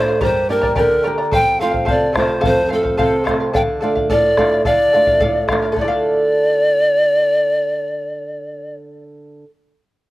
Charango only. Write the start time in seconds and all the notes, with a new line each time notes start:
0.08 D5 F5
0.21 G4 A#4 D5 G5 A#5
0.49 A#4 D5 G5 A#5
0.62 A#4 D5 A#5
0.75 G4 A#4 D5 G5 A#5
1.03 A#4 D5 G5 A#5
1.18 A#4 D5 A#5
1.31 A4 C5 F5
1.59 A4 C5 F5
1.71 C5 F5
1.85 A4 C5 F5
2.13 A4 C5 F5
2.27 C5 F5
2.41 A4 C5 F5
2.68 A4 C5 F5
2.83 C5 F5
2.97 A4 C5 F5
3.24 A4 C5 F5
3.40 C5 F5
3.53 A4 D5 F5
3.81 A4 D5 F5
3.95 D5 F5
4.10 A4 D5 F5
4.37 A4 D5 F5
4.52 D5 F5
4.65 A4 D5 F5
4.93 A4 D5 F5
5.07 D5 F5
5.20 A4 D5 F5
5.48 A4 D5 F5
5.62 D5 F5
5.72 A4
5.81 D5
5.88 F5